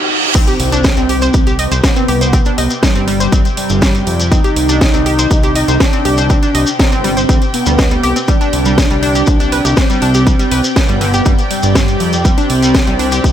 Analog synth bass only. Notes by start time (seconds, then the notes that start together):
0.60 C2
0.97 C2
1.34 C2
1.72 C2
2.08 C2
2.58 C2
2.96 G1
3.32 G1
3.70 G1
4.07 F2
4.56 C2
4.94 C2
5.31 C2
5.68 C2
6.05 C2
6.55 C2
6.92 G1
7.29 D2
7.67 D2
8.03 C2
8.53 C2
8.91 C2
9.27 C2
9.65 C2
10.02 C2
10.51 C2
10.89 G1
11.26 G1
11.63 G1
12.00 F2
12.50 C2
12.87 C2
13.24 C2